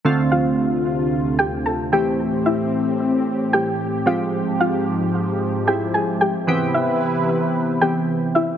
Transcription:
<<
  \new Staff \with { instrumentName = "Synth pluck" } { \time 4/4 \key d \dorian \tempo 4 = 112 r8 <f' f''>16 r4. r16 <g' g''>8 <a' a''>16 r16 <g' g''>16 r16 | r8 <e' e''>16 r4. r16 <g' g''>8 r8 <f' f''>16 r16 | r8 <f' f''>16 r4. r16 <g' g''>8 <aes' aes''>16 r16 <g' g''>16 r16 | r8 <e' e''>16 r4. r16 <g' g''>8 r8 <e' e''>16 r16 | }
  \new Staff \with { instrumentName = "Synth keys" } { \time 4/4 \key d \dorian <d a c' f'>2.~ <d a c' f'>8 <e a c' g'>8~ | <e a c' g'>2.~ <e a c' g'>8 <f aes c' g'>8~ | <f aes c' g'>2~ <f aes c' g'>8 <f aes c' e'>4. | <e b c' g'>2~ <e b c' g'>8 <e b c' g'>4. | }
  \new Staff \with { instrumentName = "Analog synth pad" } { \clef bass \time 4/4 \key d \dorian <d, c f'>2.~ <d, c f'>8 <a, c' g'>8~ | <a, c' g'>2.~ <a, c' g'>8 <aes, f>8~ | <aes, f>1 | <c e' b'>1 | }
>>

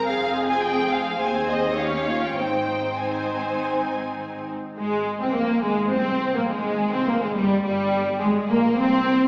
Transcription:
<<
  \new Staff \with { instrumentName = "Viola section" } { \time 4/4 \key aes \major \tempo 4 = 104 << { aes'2 aes'4 g'8 f'8 | ees'4 ees'2~ ees'8 r8 | aes8. c'16 bes8 aes8 c'8. bes16 aes8. c'16 | bes16 aes16 g8 g4 aes8 bes8 c'4 | } \\ { c'2 c'4 des'4 | c'4 c'2~ c'8 r8 | r1 | r1 | } >> }
  \new Staff \with { instrumentName = "Violin section" } { \time 4/4 \key aes \major f''8. aes''16 g''8 f''8 aes''8 ees''8 f''8. g''16 | g''4 aes''2~ aes''8 r8 | aes8. c'16 bes8 aes8 c'8. bes16 aes8. c'16 | bes16 aes16 g8 g4 aes8 bes8 c'4 | }
  \new Staff \with { instrumentName = "Violin section" } { \time 4/4 \key aes \major aes'2 c''4 des''4 | c''2.~ c''8 r8 | aes8. c'16 bes8 aes8 c'8. bes16 aes8. c'16 | bes16 aes16 g8 g4 aes8 bes8 c'4 | }
  \new Staff \with { instrumentName = "Cello section" } { \clef bass \time 4/4 \key aes \major f,2 ees,2 | aes,2.~ aes,8 r8 | aes8. c'16 bes8 aes8 c'8. bes16 aes8. c'16 | bes16 aes16 g8 g4 aes8 bes8 c'4 | }
  \new Staff \with { instrumentName = "Double bass section" } { \clef bass \time 4/4 \key aes \major f,,2 ees,2 | aes,,2.~ aes,,8 r8 | aes,,8. c,16 bes,,8 aes,,8 c,8. bes,,16 aes,,8. c,16 | bes,,16 aes,,16 g,,8 g,,4 aes,,8 bes,,8 c,4 | }
>>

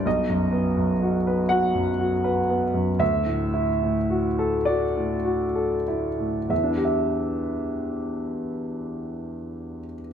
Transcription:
\new Staff \with { instrumentName = "Grand piano" } { \time 6/8 \key e \minor \tempo 4. = 35 << { dis''4. fis''4. | e''4. d''4 r8 | <e, e d' e' g' e''>2. | } \\ { b,,16 fis,16 b16 fis,16 fis'16 b'16 fis'16 fis,16 fis'16 b'16 b16 fis,16 | d,16 a,16 e'16 a,16 fis'16 a'16 fis'16 a,16 fis'16 a'16 e'16 a,16 | r2. | } >> }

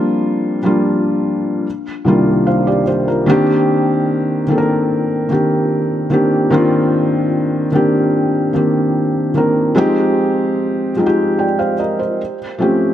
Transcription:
\new Staff \with { instrumentName = "Felt piano" } { \time 4/4 \key c \minor \tempo 4 = 74 << { r2. <c'' f''>16 <g' d''>16 <g' c''>16 <f' bes'>16~ | <f' bes'>16 r2. r8. | r1 | r2 <d'' g''>16 <c'' f''>16 <bes' ees''>16 <g' c''>8 r8. | } \\ { <f g bes d' f'>8. <f g bes d' f'>4~ <f g bes d' f'>16 r8 <c, ees g bes d' f'>4 r8 | <ees bes c' d' g'>4. <ees bes c' d' a' bes'>4 <ees bes c' d' g'>4 <ees bes c' d' g'>8 | <ees bes c' d' f'>4. <ees bes c' d' g'>4 <ees bes c' d' g'>4 <ees bes c' d' bes'>8 | <f aes c' ees' g'>4. <f aes c' ees' f' g'>4 r4 <eis a bis cis' g'>8 | } >> }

